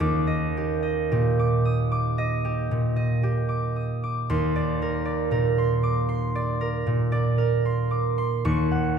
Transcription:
0.00 3.90 D#2 medium
0.00 0.26 D#5 medium
0.00 1.38 D6 medium
0.27 0.81 D#5 medium
0.57 1.11 G4 medium
0.83 2.17 D#5 medium
1.11 2.70 A#2 medium
1.11 2.44 G4 medium
1.39 1.90 D6 medium
1.65 2.10 D#6 medium
1.92 3.48 D6 medium
2.18 2.95 D#5 medium
2.45 3.22 G4 medium
2.71 4.35 A#2 medium
2.96 6.86 D#5 medium
3.23 7.13 G4 medium
3.49 4.02 D6 medium
3.76 4.21 D#6 medium
4.03 5.82 D6 medium
4.30 8.20 D#2 medium
4.30 5.57 C6 medium
4.56 5.04 D5 medium
4.82 5.30 A#4 medium
5.05 6.34 D5 medium
5.31 6.85 A#2 medium
5.31 6.60 A#4 medium
5.58 6.08 C6 medium
5.83 6.27 D6 medium
6.09 7.64 C6 medium
6.35 7.11 D5 medium
6.61 7.37 A#4 medium
6.87 8.48 A#2 medium
7.12 8.48 D5 medium
7.38 8.96 A#4 medium
7.66 8.17 C6 medium
7.91 8.36 D6 medium
8.18 8.48 C6 medium
8.45 8.99 D#2 medium
8.45 8.99 C#6 medium
8.71 8.99 F#5 medium

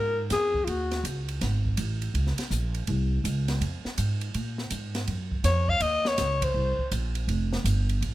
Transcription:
0.00 0.30 G#2 medium
0.00 0.20 A#4 loud
0.30 0.66 F2 medium
0.30 0.66 G#4 medium
0.30 snare soft
0.30 hi-hat pedal medium
0.30 ride medium
0.54 kick soft
0.65 1.03 D#2 medium
0.65 0.71 F4 medium
0.65 ride medium
0.69 1.05 F#4 medium
0.91 snare soft
0.91 ride soft
1.04 1.40 C#2 medium
1.04 hi-hat pedal medium
1.04 ride medium
1.28 ride soft
1.41 1.77 G#1 medium
1.41 snare soft
1.41 ride medium
1.65 kick soft
1.77 2.13 A1 medium
1.77 hi-hat pedal medium
1.77 ride medium
2.02 ride soft
2.14 2.36 C#2 medium
2.14 ride medium
2.27 snare soft
2.38 snare soft
2.38 ride medium
2.51 2.86 A#1 medium
2.51 hi-hat pedal medium
2.74 ride soft
2.87 3.23 C2 medium
2.87 ride medium
3.24 3.60 C#2 medium
3.24 hi-hat pedal medium
3.24 ride medium
3.48 snare soft
3.48 ride soft
3.61 3.83 F2 medium
3.61 ride medium
3.85 muted upright bass stroke soft
3.85 snare soft
3.98 4.34 G#2 medium
3.98 hi-hat pedal medium
3.98 ride medium
4.21 ride soft
4.34 4.70 A#2 medium
4.34 ride medium
4.58 snare soft
4.70 5.07 G#2 medium
4.70 hi-hat pedal medium
4.70 ride medium
4.95 snare soft
4.95 ride soft
5.07 5.43 F#2 medium
5.07 ride medium
5.32 kick medium
5.44 5.80 F2 medium
5.44 5.71 C#5 medium
5.44 snare soft
5.44 hi-hat pedal medium
5.44 ride medium
5.68 5.83 F5 medium
5.68 kick medium
5.80 6.17 D#2 medium
5.80 6.09 D#5 medium
5.80 ride medium
6.05 6.45 C#5 medium
6.05 snare medium
6.18 6.54 C#2 medium
6.18 snare soft
6.18 hi-hat pedal medium
6.18 ride medium
6.42 6.93 C5 medium
6.42 kick medium
6.42 ride medium
6.54 6.77 C2 medium
6.78 muted upright bass stroke soft
6.78 kick soft
6.91 7.27 A#1 medium
6.91 hi-hat pedal medium
6.91 ride medium
7.15 ride soft
7.28 7.64 F1 medium
7.28 ride medium
7.53 snare medium
7.64 8.00 G1 medium
7.64 hi-hat pedal medium
7.64 ride medium
7.89 ride soft
8.01 8.14 A#1 medium
8.01 ride medium

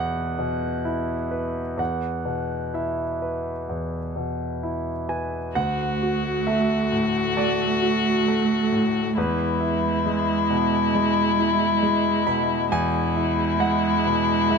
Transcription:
0.00 1.77 E2 soft
0.00 0.38 B2 soft
0.00 0.85 E4 soft
0.00 1.82 A4 medium
0.00 1.31 B4 medium
0.00 1.75 F#5 medium
0.38 1.13 B2 soft
0.85 1.60 E4 soft
1.31 1.79 B4 soft
1.77 3.64 E2 soft
1.77 2.70 F#5 soft
2.25 3.02 B2 soft
2.74 3.50 E4 soft
2.74 5.06 E5 soft
3.22 3.97 B4 soft
3.69 5.52 E2 soft
4.16 4.91 B2 soft
4.63 5.38 E4 soft
5.09 5.56 B4 soft
5.09 5.53 G#5 soft
5.55 7.33 D2 soft
5.55 9.13 A3 soft
5.55 9.13 F#4 soft
5.55 6.43 F#5 medium
6.03 6.74 F#4 soft
6.47 7.19 A3 soft
6.47 7.33 E5 medium
6.92 7.64 A2 soft
7.37 8.09 A3 soft
7.37 9.13 D5 medium
7.82 8.55 F#4 soft
8.28 9.00 A3 soft
8.72 9.17 A2 soft
9.17 10.91 E2 soft
9.17 12.68 G#3 soft
9.17 12.68 E4 medium
9.17 11.79 B4 medium
9.60 10.32 E4 soft
10.06 10.77 G#3 soft
10.50 11.21 B2 soft
10.95 11.65 G#3 soft
11.39 12.10 E4 soft
11.83 12.54 G#3 soft
12.27 12.99 B2 soft
12.27 12.69 B5 medium
12.72 14.47 E2 medium
12.72 14.58 G#3 medium
12.72 14.58 E4 medium
12.72 13.58 G#5 medium
13.16 13.88 E4 soft
13.60 14.33 G#3 soft
13.60 14.46 F#5 medium
14.05 14.58 B2 soft
14.50 14.58 G#3 soft
14.50 14.58 E5 medium

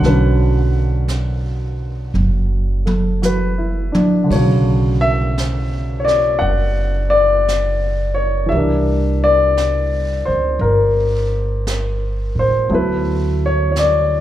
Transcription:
0.00 2.09 B1 medium
0.00 4.23 D3 soft
0.00 4.27 F#3 soft
0.00 4.29 A3 soft
0.00 4.30 F#5 medium
0.00 brush sweep soft
0.00 snare soft
0.06 4.31 C#4 medium
0.06 3.19 B4 medium
1.08 brush sweep soft
1.08 snare soft
1.08 hi-hat pedal soft
2.14 3.91 F#1 medium
2.14 mid tom soft
2.85 3.42 A4 soft
2.85 mid tom soft
3.22 3.91 F#4 soft
3.22 4.34 B4 medium
3.22 hi-hat pedal soft
3.22 mid tom soft
3.58 4.14 E4 soft
3.92 4.48 D4 soft
3.92 muted upright bass stroke soft
3.92 mid tom medium
4.24 8.49 D3 soft
4.24 8.50 F#3 soft
4.31 6.38 B1 medium
4.31 8.52 A3 soft
4.31 5.05 C#5 medium
4.31 brush sweep soft
4.31 kick medium
4.31 ride soft
4.35 8.54 C#3 soft
5.01 5.93 E5 loud
5.38 brush sweep soft
5.38 snare soft
5.38 hi-hat pedal soft
6.00 6.08 C#5 medium
6.05 6.40 D5 medium
6.05 snare soft
6.39 8.47 F#1 medium
6.39 7.14 F#5 medium
6.44 brush sweep soft
7.10 8.19 D5 medium
7.48 brush sweep soft
7.48 snare soft
7.48 hi-hat pedal soft
8.14 8.50 C#5 medium
8.46 12.67 E3 soft
8.46 12.68 G3 soft
8.46 9.24 E5 medium
8.52 10.23 C2 medium
8.52 10.60 A#4 soft
8.52 brush sweep soft
8.57 12.72 D4 soft
9.24 10.31 D5 medium
9.57 brush sweep soft
9.57 snare soft
9.57 hi-hat pedal medium
10.25 10.58 C#2 medium
10.25 10.60 C5 medium
10.59 12.32 G1 medium
10.59 11.61 A#4 medium
10.59 brush sweep soft
11.67 brush sweep soft
11.67 snare soft
11.67 hi-hat pedal medium
12.35 12.67 A2 medium
12.35 12.72 C5 medium
12.69 14.21 D2 medium
12.69 14.21 F#3 soft
12.69 14.21 A3 soft
12.69 14.21 B3 soft
12.69 14.21 E4 medium
12.69 brush sweep soft
12.75 13.46 B4 medium
13.46 13.70 C#5 medium
13.72 13.75 C#5 medium
13.76 14.21 D5 medium
13.76 brush sweep soft
13.76 snare soft
13.76 hi-hat pedal soft

